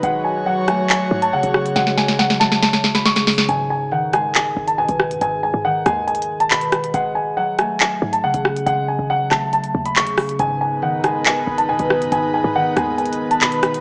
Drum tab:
HH |x-----------------x-----x--------x-----x-----x--|x-----------------x-----x--x-----x--x--x--o--x--|x-----------------x-----x--------x-----x-----x--|x-----------------x-----x-x-x----x--x--x--x--x--|
CP |------------------------x-----------------------|------------------------------------------------|------------------------x-----------------------|------------------------------------x-----------|
SD |------------------r-----------------------r-----|o--o--o--o--o--o--o--o--o--o--o--o--o--o--o--o--|------------------r-----------------------r-----|------------------r-----------------------r-----|

HH |x-----------------x-----x--------x-----x-----x--|x-----------------x-----x--x-----x--x--x--o--x--|x-----------------x-----x--------x-----x-----x--|x-----------------x-----x-x-x----x--x--x--x--x--|
CP |------------------------x-----------------------|------------------x-----------------x-----------|------------------------x-----------------------|------------------------------------x-----------|
SD |------------------r-----------------------r-----|------------------r-----------------------r-----|------------------r-----------------------r-----|------------------r-----------------------r-----|